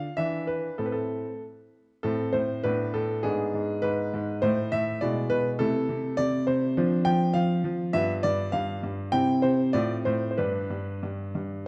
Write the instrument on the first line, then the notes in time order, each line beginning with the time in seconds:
grand piano
Already playing: F4 F5
0.17 E3 D4 E5
0.47 B4
0.78 A2 C4 E4 A4
0.86 B4
0.92 A4
2.03 A2 C4 E4 A4
2.33 A2 C5
2.63 A2 B3 D4 B4
2.94 A2 A4
3.23 G#2 B3 D4 G#4
3.54 G#2
3.82 G#2 B4
4.14 G#2
4.42 A2 A3 E4 C5
4.72 A2 E5
5.01 B2 G#3 E4 D5
5.30 B2 B4
5.59 C3 A3 E4 A4
5.89 C3
6.17 C3 D5
6.47 C3 C5
6.77 F3 C4 D4
7.05 F3 G5
7.34 F3 F5
7.64 F3
7.93 G2 B3 F4 E5
8.23 G2 D5
8.52 G2 F5
8.83 G2
9.12 C3 C4 E4 G5
9.42 C3 C5
9.73 A2 C4 F4 D5
10.05 A2 C5
10.31 C5
10.38 G2 D4 G4 B4
10.70 G2
11.03 G2
11.35 G2